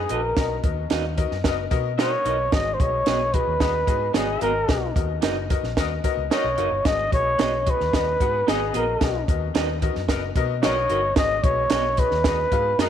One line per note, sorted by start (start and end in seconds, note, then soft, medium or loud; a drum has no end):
0.00 0.22 B3 medium
0.00 0.22 D#4 medium
0.00 0.11 G#4 medium
0.00 0.22 G#4 medium
0.00 0.22 D#5 medium
0.09 0.32 A#1 medium
0.09 0.27 B3 medium
0.09 0.19 D#4 medium
0.09 0.27 F#4 medium
0.09 0.19 F#4 medium
0.09 0.27 G#4 medium
0.09 0.61 A#4 medium
0.09 0.20 B4 medium
0.09 0.27 D#5 medium
0.09 0.20 D#5 medium
0.09 closed hi-hat medium
0.37 0.58 B1 medium
0.37 1.14 B2 medium
0.37 0.54 B3 loud
0.37 0.54 F#4 medium
0.37 0.54 A#4 medium
0.37 0.55 D#5 loud
0.37 kick loud
0.37 snare medium
0.37 closed hi-hat medium
0.64 0.85 D#2 medium
0.64 0.81 B3 medium
0.64 0.81 F#4 medium
0.64 0.81 A#4 medium
0.64 0.81 D#5 medium
0.64 kick medium
0.64 closed hi-hat medium
0.90 1.23 D#2 medium
0.90 1.08 B3 medium
0.90 1.02 D#4 medium
0.90 1.03 F#4 medium
0.90 1.08 F#4 medium
0.90 1.08 A#4 medium
0.90 1.03 A#4 medium
0.90 1.03 D#5 medium
0.90 1.08 F5 medium
0.90 snare loud
0.90 closed hi-hat medium
1.17 1.35 B3 medium
1.17 1.35 F#4 medium
1.17 1.35 A#4 medium
1.17 1.35 D#5 loud
1.17 kick medium
1.17 closed hi-hat medium
1.31 1.42 F#2 medium
1.31 snare soft
1.44 1.66 F#1 medium
1.44 1.62 B3 medium
1.44 1.56 B3 medium
1.44 1.57 D#4 medium
1.44 1.62 F#4 medium
1.44 1.62 A#4 medium
1.44 1.56 A#4 medium
1.44 1.62 D#5 loud
1.44 1.57 D#5 loud
1.44 kick medium
1.44 snare loud
1.44 closed hi-hat medium
1.71 2.14 B2 medium
1.71 1.88 B3 loud
1.71 1.89 F#4 loud
1.71 1.89 A#4 loud
1.71 1.89 D#5 loud
1.71 kick medium
1.71 closed hi-hat medium
1.98 2.16 B3 medium
1.98 2.37 B3 medium
1.98 2.37 D#4 medium
1.98 2.10 D#4 medium
1.98 2.16 F#4 medium
1.98 2.11 F#4 medium
1.98 2.16 A#4 medium
1.98 2.37 A#4 medium
1.98 2.11 A#4 loud
1.98 2.55 C#5 loud
1.98 2.37 D#5 medium
1.98 2.16 D#5 loud
1.98 2.11 D#5 medium
1.98 snare loud
1.98 closed hi-hat loud
2.25 2.47 B1 medium
2.25 2.43 B3 medium
2.25 2.35 D#4 medium
2.25 2.43 F#4 medium
2.25 2.35 F#4 medium
2.25 2.43 A#4 medium
2.25 2.35 A#4 medium
2.25 2.43 D#5 medium
2.25 2.36 D#5 medium
2.25 closed hi-hat medium
2.52 2.74 G#1 loud
2.52 3.30 G#2 medium
2.52 2.70 B3 medium
2.52 2.70 F#4 medium
2.52 2.70 G#4 medium
2.52 2.70 D#5 medium
2.52 2.75 D#5 loud
2.52 kick loud
2.52 snare loud
2.52 closed hi-hat medium
2.74 2.82 C5 medium
2.79 3.01 B1 medium
2.79 2.97 B3 medium
2.79 2.97 F#4 medium
2.79 2.97 G#4 medium
2.79 3.36 C#5 medium
2.79 2.97 D#5 medium
2.79 kick loud
2.79 closed hi-hat medium
3.06 3.39 B1 loud
3.06 3.24 B3 medium
3.06 3.19 B3 medium
3.06 3.24 F#4 medium
3.06 3.19 F#4 medium
3.06 3.24 G#4 medium
3.06 3.19 G#4 medium
3.06 3.24 D#5 medium
3.06 3.19 D#5 medium
3.06 snare loud
3.06 closed hi-hat medium
3.34 3.51 B3 medium
3.34 3.51 F#4 medium
3.34 3.51 G#4 medium
3.34 4.15 B4 loud
3.34 3.51 D#5 medium
3.34 kick medium
3.34 closed hi-hat medium
3.47 3.58 D#2 medium
3.60 3.82 D#2 loud
3.60 3.78 B3 medium
3.60 3.73 B3 medium
3.60 3.73 D#4 medium
3.60 3.78 F#4 medium
3.60 3.78 G#4 medium
3.60 3.73 G#4 medium
3.60 3.78 D#5 medium
3.60 3.73 D#5 medium
3.60 kick medium
3.60 snare loud
3.60 closed hi-hat medium
3.86 4.09 G#2 medium
3.86 4.04 B3 loud
3.86 4.05 F#4 medium
3.86 4.05 G#4 medium
3.86 4.05 D#5 medium
3.86 kick medium
3.86 closed hi-hat medium
4.13 4.36 G#1 medium
4.13 4.31 B3 medium
4.13 4.26 B3 medium
4.13 4.54 B3 medium
4.13 4.54 D#4 medium
4.13 4.31 F#4 medium
4.13 4.27 F#4 medium
4.13 4.31 G#4 medium
4.13 4.27 G#4 medium
4.13 4.53 G#4 medium
4.13 4.40 G#4 medium
4.13 4.31 C#5 medium
4.13 4.54 D#5 loud
4.13 4.27 D#5 medium
4.13 snare loud
4.13 closed hi-hat loud
4.41 4.63 G#1 medium
4.41 4.58 B3 medium
4.41 4.51 B3 medium
4.41 4.58 F#4 medium
4.41 4.51 F#4 medium
4.41 4.59 G#4 medium
4.41 4.52 G#4 medium
4.41 4.92 A#4 medium
4.41 4.59 D#5 medium
4.41 4.52 D#5 medium
4.41 closed hi-hat medium
4.68 4.90 B1 medium
4.68 5.45 B2 medium
4.68 4.86 B3 loud
4.68 4.86 F#4 medium
4.68 4.86 A#4 medium
4.68 4.86 D#5 loud
4.68 kick loud
4.68 snare medium
4.68 closed hi-hat medium
4.95 5.17 D#2 medium
4.95 5.13 B3 medium
4.95 5.13 F#4 medium
4.95 5.13 A#4 medium
4.95 5.13 D#5 medium
4.95 kick medium
4.95 closed hi-hat medium
5.22 5.55 F#1 loud
5.22 5.40 B3 medium
5.22 5.34 D#4 medium
5.22 5.35 F#4 medium
5.22 5.40 F#4 medium
5.22 5.40 A#4 medium
5.22 5.35 A#4 loud
5.22 5.40 D#5 medium
5.22 5.35 D#5 medium
5.22 snare loud
5.22 closed hi-hat medium
5.50 5.67 B3 medium
5.50 5.67 F#4 medium
5.50 5.67 A#4 medium
5.50 5.67 D#5 medium
5.50 kick medium
5.50 closed hi-hat medium
5.63 5.74 A#1 medium
5.63 snare soft
5.77 5.98 D#2 medium
5.77 5.94 B3 medium
5.77 5.89 B3 medium
5.77 5.89 D#4 medium
5.77 5.94 F#4 medium
5.77 5.89 A#4 medium
5.77 5.95 A#4 medium
5.77 5.89 D#5 loud
5.77 5.95 D#5 loud
5.77 kick medium
5.77 snare loud
5.77 closed hi-hat medium
6.04 6.21 B3 loud
6.04 6.21 F#4 medium
6.04 6.21 A#4 loud
6.04 6.22 D#5 loud
6.04 kick medium
6.04 closed hi-hat medium
6.17 6.28 C#2 medium
6.30 6.48 B3 medium
6.30 6.70 B3 medium
6.30 6.43 D#4 medium
6.30 6.70 D#4 medium
6.30 6.48 F#4 medium
6.30 6.43 F#4 medium
6.30 6.48 A#4 medium
6.30 6.43 A#4 medium
6.30 6.70 A#4 medium
6.30 6.88 C#5 medium
6.30 6.48 D#5 medium
6.30 6.70 D#5 medium
6.30 6.44 D#5 medium
6.30 snare loud
6.30 closed hi-hat medium
6.44 6.55 B1 medium
6.57 6.69 F#1 medium
6.57 6.75 B3 medium
6.57 6.67 D#4 soft
6.57 6.75 F#4 medium
6.57 6.68 F#4 medium
6.57 6.75 A#4 medium
6.57 6.68 A#4 medium
6.57 6.68 D#5 medium
6.57 6.75 F5 medium
6.57 closed hi-hat medium
6.72 6.83 G1 medium
6.85 7.07 G#1 medium
6.85 7.62 G#2 medium
6.85 7.02 B3 medium
6.85 7.02 F#4 medium
6.85 7.02 G#4 medium
6.85 7.02 D#5 loud
6.85 7.13 D#5 loud
6.85 kick loud
6.85 snare loud
6.85 closed hi-hat medium
7.12 7.34 B1 medium
7.12 7.29 B3 medium
7.12 7.29 F#4 medium
7.12 7.29 G#4 medium
7.12 7.72 C#5 loud
7.12 7.29 D#5 medium
7.12 kick medium
7.12 closed hi-hat medium
7.38 7.72 B1 medium
7.38 7.51 B3 medium
7.38 7.56 B3 medium
7.38 7.51 F#4 medium
7.38 7.57 F#4 medium
7.38 7.51 G#4 medium
7.38 7.57 G#4 medium
7.38 7.51 D#5 medium
7.38 7.57 D#5 medium
7.38 snare loud
7.38 closed hi-hat medium
7.66 7.83 B3 medium
7.66 7.84 F#4 medium
7.66 7.83 G#4 medium
7.66 7.84 D#5 medium
7.66 kick medium
7.66 closed hi-hat medium
7.70 8.50 B4 loud
7.80 7.91 D#2 medium
7.80 snare soft
7.93 8.15 D#2 medium
7.93 8.11 B3 medium
7.93 8.05 B3 medium
7.93 8.05 D#4 medium
7.93 8.11 F#4 medium
7.93 8.11 G#4 medium
7.93 8.05 G#4 medium
7.93 8.11 D#5 medium
7.93 8.05 D#5 medium
7.93 kick medium
7.93 snare loud
7.93 closed hi-hat medium
8.20 8.42 G#2 medium
8.20 8.38 B3 medium
8.20 8.38 F#4 medium
8.20 8.38 G#4 medium
8.20 8.38 F#5 loud
8.20 kick medium
8.20 closed hi-hat medium
8.47 8.70 G#1 medium
8.47 8.59 B3 medium
8.47 8.65 B3 medium
8.47 8.86 B3 medium
8.47 8.86 D#4 medium
8.47 8.59 F#4 medium
8.47 8.65 F#4 medium
8.47 8.59 G#4 medium
8.47 8.86 G#4 medium
8.47 8.65 G#4 medium
8.47 8.75 G#4 medium
8.47 8.59 D#5 medium
8.47 8.65 D#5 medium
8.47 8.86 D#5 medium
8.47 snare loud
8.47 closed hi-hat medium
8.73 8.96 A#1 medium
8.73 8.83 B3 medium
8.73 8.91 B3 medium
8.73 8.83 F#4 medium
8.73 8.92 F#4 medium
8.73 8.84 G#4 medium
8.73 8.91 G#4 medium
8.73 9.26 A#4 medium
8.73 8.84 D#5 medium
8.73 8.92 D#5 medium
8.73 closed hi-hat medium
9.00 9.23 B1 medium
9.00 9.78 B2 medium
9.00 9.18 B3 medium
9.00 9.18 F#4 medium
9.00 9.18 A#4 medium
9.00 9.18 D#5 loud
9.00 kick medium
9.00 snare medium
9.00 closed hi-hat medium
9.28 9.50 D#2 medium
9.28 9.46 B3 medium
9.28 9.46 F#4 medium
9.28 9.46 A#4 medium
9.28 9.46 D#5 medium
9.28 kick loud
9.28 closed hi-hat medium
9.55 9.87 D#2 medium
9.55 9.73 B3 medium
9.55 9.67 D#4 medium
9.55 9.67 F#4 medium
9.55 9.73 F#4 medium
9.55 9.67 A#4 medium
9.55 9.73 A#4 medium
9.55 9.68 D#5 medium
9.55 9.73 D#5 medium
9.55 snare loud
9.55 closed hi-hat medium
9.82 9.99 B3 medium
9.82 9.99 F#4 medium
9.82 10.00 A#4 medium
9.82 10.00 D#5 loud
9.82 kick medium
9.82 closed hi-hat medium
9.95 10.07 F#2 medium
9.95 snare soft
10.08 10.30 F#1 medium
10.08 10.20 B3 medium
10.08 10.27 B3 medium
10.08 10.21 D#4 loud
10.08 10.26 F#4 medium
10.08 10.21 A#4 medium
10.08 10.26 A#4 medium
10.08 10.21 D#5 loud
10.08 10.27 D#5 loud
10.08 kick medium
10.08 snare loud
10.08 closed hi-hat loud
10.36 10.65 B2 loud
10.36 10.53 B3 loud
10.36 10.54 F#4 loud
10.36 10.54 A#4 loud
10.36 10.54 D#5 loud
10.36 kick medium
10.36 closed hi-hat medium
10.62 10.85 B1 loud
10.62 11.01 B3 medium
10.62 10.80 B3 medium
10.62 10.75 D#4 medium
10.62 11.01 D#4 loud
10.62 10.75 F#4 medium
10.62 10.80 F#4 medium
10.62 11.01 A#4 medium
10.62 10.80 A#4 medium
10.62 10.75 A#4 loud
10.62 11.14 C#5 loud
10.62 11.01 D#5 loud
10.62 10.75 D#5 loud
10.62 10.81 D#5 medium
10.62 snare loud
10.62 closed hi-hat medium
10.89 11.12 G1 medium
10.89 11.07 B3 medium
10.89 10.99 D#4 medium
10.89 11.07 F#4 medium
10.89 11.00 F#4 medium
10.89 11.07 A#4 medium
10.89 11.00 A#4 medium
10.89 11.08 D#5 medium
10.89 11.00 D#5 medium
10.89 closed hi-hat medium
11.16 11.38 G#1 medium
11.16 11.94 G#2 medium
11.16 11.34 B3 medium
11.16 11.34 F#4 medium
11.16 11.34 G#4 medium
11.16 11.45 D#5 loud
11.16 11.34 D#5 loud
11.16 kick loud
11.16 snare loud
11.16 closed hi-hat medium
11.44 11.65 B1 medium
11.44 11.62 B3 medium
11.44 11.62 F#4 medium
11.44 11.62 G#4 medium
11.44 12.01 C#5 loud
11.44 11.62 D#5 medium
11.44 kick loud
11.44 closed hi-hat medium
11.70 12.03 B1 medium
11.70 11.83 B3 medium
11.70 11.88 B3 medium
11.70 11.88 F#4 medium
11.70 11.83 F#4 medium
11.70 11.88 G#4 medium
11.70 11.83 G#4 medium
11.70 11.89 A#4 medium
11.70 11.84 D#5 loud
11.70 snare loud
11.70 closed hi-hat medium
11.97 12.16 B3 medium
11.97 12.16 F#4 medium
11.97 12.16 G#4 medium
11.97 12.82 B4 loud
11.97 12.16 D#5 medium
11.97 kick medium
11.97 closed hi-hat medium
12.11 12.44 D#2 loud
12.11 snare soft
12.24 12.43 B3 medium
12.24 12.38 B3 medium
12.24 12.37 D#4 medium
12.24 12.43 F#4 medium
12.24 12.43 G#4 medium
12.24 12.38 G#4 medium
12.24 12.43 D#5 medium
12.24 12.37 D#5 loud
12.24 kick medium
12.24 snare loud
12.24 closed hi-hat loud
12.52 12.73 G#2 medium
12.52 12.69 B3 medium
12.52 12.70 F#4 medium
12.52 12.70 G#4 medium
12.52 12.70 F5 loud
12.52 kick medium
12.52 closed hi-hat medium
12.78 12.89 F#2 medium
12.78 12.89 B3 medium
12.78 12.89 D#4 medium
12.78 12.89 F#4 medium
12.78 12.89 G#4 medium
12.78 12.89 A#4 medium
12.78 12.89 D#5 medium
12.78 12.89 D#5 loud
12.78 snare loud
12.78 closed hi-hat loud